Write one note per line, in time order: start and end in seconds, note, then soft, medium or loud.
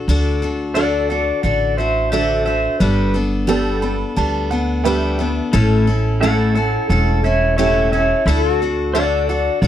0.08 1.30 D2 medium
0.08 0.42 D3 medium
0.08 0.43 D4 medium
0.08 0.42 F#4 loud
0.08 0.41 A4 medium
0.42 0.75 D4 medium
0.42 0.75 F#4 soft
0.42 0.75 A4 medium
0.74 1.10 D3 medium
0.74 1.10 D4 medium
0.74 1.20 D4 medium
0.74 1.10 F#4 medium
0.74 1.20 F#4 medium
0.74 1.09 A4 medium
0.74 1.20 A4 medium
0.74 1.09 D5 medium
0.74 1.08 F#5 medium
1.10 1.43 D4 soft
1.10 1.43 F#4 soft
1.10 1.44 A4 soft
1.10 1.42 D5 medium
1.10 1.42 F#5 medium
1.43 2.66 A1 medium
1.43 1.78 D3 medium
1.43 1.78 D4 medium
1.43 1.78 F#4 medium
1.43 1.77 A4 medium
1.43 1.75 D5 medium
1.43 1.77 F#5 medium
1.77 2.11 D4 soft
1.77 2.12 F#4 soft
1.77 2.12 A4 soft
1.77 2.10 C5 medium
1.77 2.11 E5 medium
2.12 2.46 D3 medium
2.12 2.56 D4 medium
2.12 2.47 D4 medium
2.12 2.56 F#4 medium
2.12 2.46 F#4 medium
2.12 2.56 A4 medium
2.12 2.44 A4 medium
2.12 2.44 C5 medium
2.12 2.44 E5 medium
2.45 2.80 D4 soft
2.45 2.81 F#4 soft
2.45 2.80 A4 soft
2.45 2.78 C5 medium
2.45 2.79 E5 medium
2.80 4.03 G1 medium
2.80 3.15 G3 medium
2.80 3.14 B3 medium
2.80 3.15 D4 medium
2.80 3.13 A4 medium
2.80 3.13 B4 medium
3.14 3.48 B3 medium
3.14 3.47 D4 soft
3.14 3.48 A4 soft
3.47 3.82 G3 medium
3.47 3.92 B3 medium
3.47 3.82 B3 medium
3.47 3.83 D4 loud
3.47 3.92 G4 medium
3.47 3.93 A4 loud
3.47 3.81 A4 loud
3.82 4.17 B3 medium
3.82 4.16 D4 soft
3.82 4.17 A4 medium
3.82 4.14 B5 medium
4.16 5.39 D2 medium
4.16 4.51 G3 medium
4.16 4.51 B3 medium
4.16 4.51 D4 medium
4.16 4.50 A4 medium
4.16 4.49 A5 medium
4.51 4.85 B3 medium
4.51 4.85 D4 soft
4.51 4.85 A4 medium
4.51 4.83 F#5 medium
4.84 5.19 G3 medium
4.84 5.28 B3 medium
4.84 5.19 B3 medium
4.84 5.20 D4 medium
4.84 5.28 G4 medium
4.84 5.18 A4 loud
4.84 5.29 B4 medium
4.84 5.49 E5 medium
5.19 5.54 B3 soft
5.19 5.53 D4 medium
5.19 5.53 A4 medium
5.53 6.75 A1 medium
5.53 5.87 A2 medium
5.53 5.88 A3 medium
5.53 5.88 C#4 loud
5.53 5.88 E4 medium
5.53 5.86 A4 loud
5.87 6.22 C#4 soft
5.87 6.22 E4 medium
5.87 6.21 A4 medium
6.21 6.56 A2 medium
6.21 6.57 A3 medium
6.21 6.65 C#4 medium
6.21 6.56 C#4 medium
6.21 6.65 E4 medium
6.21 6.55 E4 medium
6.21 6.54 A4 medium
6.21 6.66 A4 medium
6.21 6.54 A4 medium
6.21 6.54 F#5 medium
6.55 6.89 C#4 soft
6.55 6.90 E4 medium
6.55 6.87 A4 medium
6.55 6.90 A4 medium
6.55 6.88 F#5 loud
6.89 8.12 E1 medium
6.89 7.24 A3 medium
6.89 7.24 C#4 medium
6.89 7.24 E4 medium
6.89 7.21 A4 medium
6.89 7.23 A4 medium
6.89 7.23 F#5 medium
7.24 7.58 C#4 soft
7.24 7.58 E4 soft
7.24 7.58 A4 soft
7.24 7.56 C#5 medium
7.24 7.56 E5 medium
7.57 7.92 A2 medium
7.57 7.92 A3 medium
7.57 8.02 C#4 medium
7.57 7.93 C#4 medium
7.57 8.02 E4 medium
7.57 7.93 E4 medium
7.57 8.02 G4 medium
7.57 7.92 A4 medium
7.57 7.89 C#5 medium
7.57 7.91 E5 medium
7.92 8.27 C#4 soft
7.92 8.27 E4 soft
7.92 8.27 A4 medium
7.92 8.24 C#5 medium
7.92 8.25 E5 medium
8.26 9.48 D2 medium
8.26 8.61 D3 medium
8.26 8.61 D4 medium
8.26 8.52 E4 medium
8.26 8.61 F#4 medium
8.26 8.59 A4 loud
8.26 8.61 A4 medium
8.52 9.67 F#4 medium
8.62 8.94 D4 soft
8.62 8.94 F#4 soft
8.62 8.95 A4 medium
8.94 9.29 D3 medium
8.94 9.38 D4 medium
8.94 9.29 D4 medium
8.94 9.38 F#4 medium
8.94 9.29 F#4 medium
8.94 9.38 A4 medium
8.94 9.28 A4 medium
8.94 9.27 D5 medium
8.94 9.27 F#5 medium
9.29 9.62 D4 soft
9.29 9.63 F#4 soft
9.29 9.63 A4 medium
9.29 9.60 D5 medium
9.29 9.61 F#5 medium
9.62 9.67 A1 medium
9.62 9.67 D3 medium
9.62 9.67 D4 medium
9.62 9.67 F#4 medium
9.62 9.67 D5 medium
9.62 9.67 F#5 medium